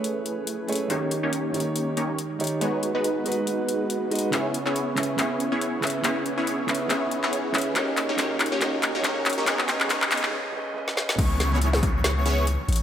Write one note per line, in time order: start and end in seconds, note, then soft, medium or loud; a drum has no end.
0.00 0.67 A3 medium
0.00 0.88 A3 medium
0.00 0.88 C#4 medium
0.00 0.88 E4 medium
0.00 0.68 G#4 medium
0.00 0.88 G#4 medium
0.00 0.69 B4 medium
0.00 0.88 B4 medium
0.00 0.69 C#5 loud
0.00 riser medium
0.04 closed hi-hat medium
0.26 closed hi-hat medium
0.47 closed hi-hat medium
0.67 0.87 A3 medium
0.67 0.88 G#4 medium
0.67 0.88 B4 medium
0.67 0.88 C#5 loud
0.67 closed hi-hat soft
0.72 closed hi-hat medium
0.75 closed hi-hat medium
0.88 1.51 D#3 medium
0.88 1.20 A#3 medium
0.88 1.20 C#4 medium
0.88 1.52 D#4 medium
0.88 1.20 D#4 medium
0.88 1.20 G4 medium
0.88 1.52 G4 medium
0.88 1.20 C#5 medium
0.88 closed hi-hat medium
0.92 1.53 C#5 medium
1.11 closed hi-hat medium
1.23 1.95 A#3 medium
1.23 1.95 C#4 medium
1.23 1.95 D#4 medium
1.23 1.95 G4 medium
1.23 1.95 C#5 loud
1.33 closed hi-hat medium
1.52 2.37 D#3 medium
1.52 2.37 D#4 medium
1.52 2.38 G4 medium
1.52 2.39 C#5 loud
1.52 closed hi-hat soft
1.60 closed hi-hat medium
1.76 closed hi-hat medium
1.97 2.17 A#3 medium
1.97 2.17 C#4 medium
1.97 2.17 D#4 medium
1.97 2.17 G4 medium
1.97 2.17 C#5 medium
1.97 closed hi-hat medium
2.18 closed hi-hat medium
2.39 2.59 D#3 medium
2.39 2.59 D#4 medium
2.39 2.59 G4 medium
2.39 2.60 C#5 loud
2.39 closed hi-hat soft
2.44 closed hi-hat medium
2.47 closed hi-hat medium
2.59 3.22 G#3 medium
2.59 2.92 G#3 medium
2.59 2.92 B3 medium
2.59 3.23 D#4 medium
2.59 2.92 D#4 medium
2.59 2.92 F#4 medium
2.59 3.24 F#4 medium
2.59 2.92 C#5 medium
2.59 closed hi-hat medium
2.63 3.24 B4 medium
2.83 closed hi-hat medium
2.95 4.31 G#3 medium
2.95 4.31 B3 medium
2.95 4.31 D#4 medium
2.95 4.31 F#4 medium
2.95 4.31 B4 medium
3.04 closed hi-hat medium
3.24 4.08 G#3 medium
3.24 4.09 D#4 medium
3.24 4.09 F#4 medium
3.24 closed hi-hat soft
3.28 4.10 B4 loud
3.28 closed hi-hat medium
3.47 closed hi-hat medium
3.69 closed hi-hat medium
3.90 closed hi-hat medium
4.11 4.30 G#3 medium
4.11 4.30 D#4 medium
4.11 4.30 F#4 medium
4.11 4.31 D#5 medium
4.11 closed hi-hat soft
4.15 closed hi-hat medium
4.19 closed hi-hat medium
4.31 4.94 C#3 medium
4.31 4.63 B3 medium
4.31 4.95 C#4 medium
4.31 4.63 C#4 medium
4.31 4.63 E4 medium
4.31 4.63 G#4 medium
4.31 4.95 B4 medium
4.31 4.63 C#5 medium
4.31 clap soft
4.31 closed hi-hat medium
4.35 4.96 E5 medium
4.54 closed hi-hat medium
4.66 5.17 B3 medium
4.66 5.17 C#4 medium
4.66 5.17 E4 medium
4.66 5.17 G#4 medium
4.66 5.17 C#5 medium
4.66 clap soft
4.76 closed hi-hat medium
4.95 5.15 C#3 medium
4.95 5.16 C#4 medium
4.95 5.17 B4 medium
4.95 clap medium
4.95 closed hi-hat soft
4.99 5.18 E5 medium
4.99 closed hi-hat medium
5.17 5.79 C#3 medium
5.17 5.49 B3 medium
5.17 5.80 C#4 medium
5.17 5.49 C#4 medium
5.17 5.49 E4 medium
5.17 5.49 G#4 medium
5.17 5.81 B4 medium
5.17 5.49 C#5 medium
5.17 5.82 E5 medium
5.17 clap soft
5.17 closed hi-hat medium
5.40 closed hi-hat medium
5.52 6.03 B3 medium
5.52 6.03 C#4 medium
5.52 6.03 E4 medium
5.52 6.03 G#4 medium
5.52 6.03 C#5 loud
5.61 closed hi-hat medium
5.81 6.01 C#3 medium
5.81 6.02 C#4 medium
5.81 6.03 B4 medium
5.81 clap medium
5.81 closed hi-hat soft
5.85 6.04 E5 loud
5.85 closed hi-hat medium
5.90 closed hi-hat medium
6.02 6.65 C#3 medium
6.02 6.35 B3 medium
6.02 6.66 C#4 medium
6.02 6.35 C#4 medium
6.02 6.35 E4 medium
6.02 6.35 G#4 medium
6.02 6.67 B4 medium
6.02 6.35 C#5 medium
6.02 clap medium
6.02 closed hi-hat medium
6.06 6.67 E5 medium
6.26 closed hi-hat medium
6.38 6.88 B3 medium
6.38 6.88 C#4 medium
6.38 6.88 E4 medium
6.38 6.88 G#4 medium
6.38 6.88 C#5 loud
6.47 closed hi-hat medium
6.67 6.86 C#3 medium
6.67 6.88 C#4 medium
6.67 6.89 B4 medium
6.67 6.89 E5 medium
6.67 clap medium
6.67 closed hi-hat soft
6.75 closed hi-hat medium
6.88 7.51 C#3 medium
6.88 7.21 B3 medium
6.88 7.52 C#4 medium
6.88 7.21 C#4 medium
6.88 7.21 E4 medium
6.88 7.21 G#4 medium
6.88 7.52 B4 medium
6.88 7.20 C#5 medium
6.88 7.53 E5 medium
6.88 clap medium
6.88 closed hi-hat medium
7.11 closed hi-hat medium
7.23 7.74 B3 medium
7.23 7.74 C#4 medium
7.23 7.74 E4 medium
7.23 7.74 G#4 medium
7.23 7.74 C#5 loud
7.23 clap medium
7.33 closed hi-hat medium
7.52 7.72 C#3 medium
7.52 7.73 C#4 medium
7.52 7.75 B4 medium
7.52 7.75 E5 loud
7.52 clap medium
7.52 closed hi-hat soft
7.58 closed hi-hat medium
7.62 closed hi-hat medium
7.74 8.15 C#3 medium
7.74 8.06 A#3 medium
7.74 8.16 C#4 medium
7.74 8.06 C#4 medium
7.74 8.06 D#4 medium
7.74 8.06 G4 medium
7.74 8.06 C#5 medium
7.74 clap medium
7.74 closed hi-hat medium
7.78 8.18 D#5 medium
7.97 clap medium
7.97 closed hi-hat medium
8.09 8.17 A#3 medium
8.09 8.17 C#4 medium
8.09 8.17 D#4 medium
8.09 8.17 G4 medium
8.09 8.17 C#5 loud
8.17 8.58 C#3 medium
8.17 8.49 A#3 medium
8.17 8.59 C#4 medium
8.17 8.49 C#4 medium
8.17 8.49 D#4 medium
8.17 8.49 G4 medium
8.17 8.60 A#4 medium
8.17 8.49 C#5 medium
8.17 clap medium
8.17 closed hi-hat medium
8.21 8.61 D#5 medium
8.40 clap medium
8.40 closed hi-hat soft
8.46 closed hi-hat medium
8.52 8.60 A#3 medium
8.52 8.60 C#4 medium
8.52 8.60 D#4 medium
8.52 8.60 G4 medium
8.52 8.60 C#5 loud
8.59 9.01 C#3 medium
8.59 8.92 A#3 medium
8.59 9.02 C#4 medium
8.59 8.92 C#4 medium
8.59 8.92 D#4 medium
8.59 8.92 G4 medium
8.59 9.03 A#4 medium
8.59 8.92 C#5 medium
8.59 9.04 D#5 medium
8.59 clap medium
8.59 closed hi-hat medium
8.83 clap medium
8.83 closed hi-hat medium
8.95 9.03 A#3 medium
8.95 9.03 C#4 medium
8.95 9.03 D#4 medium
8.95 9.03 G4 medium
8.95 9.03 C#5 loud
9.02 9.44 C#3 medium
9.02 9.35 A#3 medium
9.02 9.45 C#4 medium
9.02 9.35 C#4 medium
9.02 9.35 D#4 medium
9.02 9.35 G4 medium
9.02 9.46 A#4 medium
9.02 9.35 C#5 loud
9.02 clap medium
9.02 closed hi-hat medium
9.06 9.47 D#5 medium
9.26 clap medium
9.26 closed hi-hat soft
9.30 closed hi-hat medium
9.33 closed hi-hat medium
9.38 9.46 A#3 medium
9.38 9.46 C#4 medium
9.38 9.46 D#4 medium
9.38 9.46 G4 medium
9.38 9.46 C#5 loud
9.45 9.65 C#3 medium
9.45 9.67 B3 medium
9.45 9.66 C#4 medium
9.45 9.67 C#4 medium
9.45 9.67 D#4 medium
9.45 9.67 G#4 medium
9.45 9.67 B4 medium
9.45 9.67 C#5 medium
9.45 9.68 D#5 medium
9.45 clap medium
9.45 closed hi-hat medium
9.45 noise sweep medium
9.59 clap medium
9.67 9.86 C#3 medium
9.67 9.88 B3 medium
9.67 9.88 C#4 medium
9.67 9.89 D#4 medium
9.67 9.89 G#4 medium
9.67 9.89 B4 medium
9.67 9.89 C#5 medium
9.67 9.89 D#5 medium
9.67 clap medium
9.67 closed hi-hat medium
9.80 clap medium
9.88 10.08 C#3 medium
9.88 10.10 B3 medium
9.88 10.09 C#4 medium
9.88 10.10 C#4 medium
9.88 10.10 D#4 medium
9.88 10.10 G#4 medium
9.88 10.10 B4 medium
9.88 10.10 C#5 loud
9.88 clap loud
9.88 closed hi-hat medium
9.92 10.11 D#5 medium
10.02 clap medium
10.09 10.29 C#3 medium
10.09 10.31 B3 medium
10.09 10.31 C#4 medium
10.09 10.31 D#4 medium
10.09 10.31 G#4 medium
10.09 10.32 B4 medium
10.09 10.31 C#5 loud
10.09 10.32 D#5 medium
10.09 clap loud
10.09 closed hi-hat medium
10.17 closed hi-hat medium
10.23 clap medium
10.31 10.51 C#3 medium
10.31 10.52 C#4 medium
10.31 10.53 B4 medium
10.31 10.54 D#5 medium
10.52 10.72 C#3 medium
10.52 10.74 C#4 medium
10.52 10.75 B4 medium
10.56 10.75 D#5 medium
10.74 10.94 C#3 medium
10.74 10.95 C#4 medium
10.74 10.96 B4 medium
10.78 10.97 D#5 medium
10.88 snare medium
10.95 11.16 C#3 medium
10.95 11.17 C#4 medium
10.95 11.17 B4 medium
10.95 11.18 D#5 medium
10.95 snare medium
11.09 snare medium
11.19 12.58 C#2 loud
11.19 11.49 B3 medium
11.19 11.49 C#4 medium
11.19 11.49 E4 medium
11.19 11.49 G#4 medium
11.19 11.49 C#5 medium
11.19 11.49 C#6 loud
11.19 kick loud
11.19 closed hi-hat medium
11.19 crash loud
11.19 downlifter medium
11.40 snare medium
11.40 closed hi-hat medium
11.52 12.23 B3 medium
11.52 12.24 C#4 medium
11.52 12.23 E4 medium
11.52 12.23 G#4 medium
11.52 12.23 C#5 loud
11.52 12.24 C#6 medium
11.61 closed hi-hat medium
11.73 snare medium
11.83 kick loud
11.83 closed hi-hat medium
12.04 snare loud
12.04 closed hi-hat medium
12.26 12.46 B3 medium
12.26 12.46 C#4 medium
12.26 12.46 E4 medium
12.26 12.46 G#4 medium
12.26 12.46 C#5 medium
12.26 12.45 C#6 medium
12.26 closed hi-hat medium
12.47 closed hi-hat medium
12.69 12.83 A1 medium
12.69 closed hi-hat soft
12.72 closed hi-hat medium
12.76 closed hi-hat medium